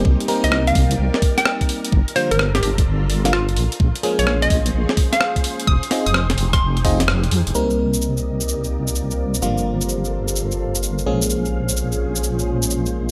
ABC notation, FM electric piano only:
X:1
M:4/4
L:1/16
Q:"Swing 16ths" 1/4=128
K:Cm
V:1 name="FM electric piano"
[G,B,CEG]2 [G,B,CEB]12- [G,B,CEB]2 | z2 [D,F,G,B,F] z8 [D,F,G,B,F] z4 | z2 [F,A,B,_DA]12- [F,A,B,DA]2 | z2 [CEFAe] z6 z [CEFAe] z4 z |
[G,B,CEB]16 | [D,F,G,B,F]12- [D,F,G,B,F]2 [F,A,B,_DA]2- | [F,A,B,_DA]16 |]